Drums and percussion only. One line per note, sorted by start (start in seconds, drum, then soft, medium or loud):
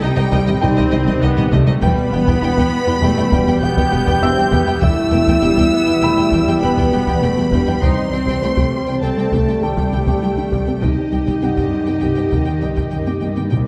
0.32 taiko medium
0.48 taiko low-mid soft
0.63 taiko low-mid medium
0.78 taiko medium
1.08 taiko medium
1.38 taiko low-mid soft
1.53 taiko medium
1.68 taiko low-mid soft
1.83 taiko medium
2.28 taiko medium
2.58 taiko medium
3.32 taiko medium
3.77 taiko medium
4.08 taiko medium
4.52 taiko medium
4.82 taiko medium
5.27 taiko medium
5.57 taiko medium
6.32 taiko medium
6.77 taiko medium
7.08 taiko medium
7.52 taiko medium
7.82 taiko medium
8.27 taiko medium
8.57 taiko medium
9.32 taiko medium
9.77 taiko medium
10.07 taiko medium
10.52 taiko medium
10.82 taiko medium
11.27 taiko medium
11.57 taiko medium
12.32 taiko medium
12.77 taiko medium
13.07 taiko high medium
13.22 taiko high medium
13.37 taiko high medium
13.52 taiko low-mid medium